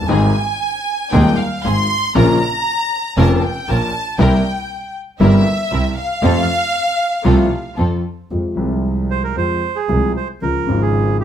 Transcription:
0.02 grand piano G1
0.08 grand piano G#1 G#2 C3 D#3 G#3 D#4, double bass G#1, string section C4 D#4 G#4, violin section G#5
1.12 grand piano D#1 D#2 C3 D#3 G#3 D#4, double bass D#2, string section C4 D#4 G#4, violin section G5
1.38 violin section F5
1.64 grand piano G#1 G#2, double bass G#1, string section C4 D#4 G#4, violin section C6
2.15 grand piano A#1 A#2 C#3 F3 A#3 F4, double bass A#1, string section C#4 F4 A#4, violin section A#5
3.17 grand piano F1 F2 C#3 F3 A#3 F4, double bass F1, string section C#4 F4 A#4, violin section A5
3.36 violin section A5
3.43 violin section G5
3.68 grand piano A#1 A#2, double bass A#1, string section C#4 F4 A#4, violin section A5
4.19 double bass C2, grand piano C2 C3 G3 A#3 E4, string section C4 E4 A#4, violin section G5
5.20 double bass G1, grand piano G1 G2 C3 G3 A#3 E4, string section C4 E4 A#4, violin section E5
5.71 grand piano C2 C3, double bass C2, string section C4 E4 A#4
5.97 violin section F5
6.22 grand piano F2 C3 F3 A3 F4, double bass F2, string section C4 F4 A4
7.24 grand piano C2 C3 F3 A3 F4, double bass C2, string section C4 F4 A4
7.77 grand piano F2 F3, double bass F2, string section C4 F4 A4
8.31 grand piano F2 C3 F3 G#3 F4, double bass F2
8.55 grand piano C2 C3 F3 G#3, double bass C2
8.59 grand piano F4
9.11 bandoneon C5
9.24 bandoneon A#4
9.36 grand piano F2 C3 F3 G#3 F4, double bass F2, bandoneon C5
9.76 bandoneon G#4
9.89 double bass C2, grand piano C2 C3 F3 G#3 F4
10.17 bandoneon C5
10.41 double bass C#2, grand piano C#2 C#3 F3 G#3 F4, bandoneon A#4
10.67 double bass G#1, grand piano G#1 G#2 C#3 F3 G#3
10.71 grand piano F4
10.82 bandoneon G#4
11.21 bandoneon G4

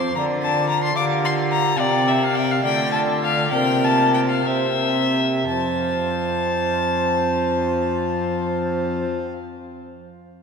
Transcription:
Already playing: pipe organ F2 C4 C5, cello F2, flute C5, violin C6
0.10 pipe organ D4 F4 A#4
0.15 pipe organ D3, cello D3, flute D5, violin A#5
0.42 violin A5
0.70 violin A#5
0.84 violin C6
0.92 cello D3, pipe organ F4 G4 A#4
0.96 pipe organ D3, flute F5, violin D6
1.25 violin C6
1.52 violin A#5
1.75 pipe organ C4 G4 A#4
1.79 cello C3, pipe organ C3, violin D5, flute G5
2.07 violin E5
2.23 violin F5
2.35 violin G5
2.51 violin F5
2.58 pipe organ A3 F4 A4
2.64 pipe organ D3, cello D3, flute D5, violin G5
2.92 violin A5
3.23 violin F5
3.47 pipe organ A#3 F4 C5, violin G5
3.52 pipe organ C3, cello C3, flute A#4
3.84 violin A5
4.14 violin G5
4.29 violin F5
4.41 pipe organ A#3 G4 C5
4.46 cello C3, pipe organ C3, flute C5, violin E5
5.48 cello F2, pipe organ F3, flute C5, violin A5
5.56 pipe organ C4
5.62 pipe organ F4
5.70 pipe organ C5
5.77 pipe organ F5

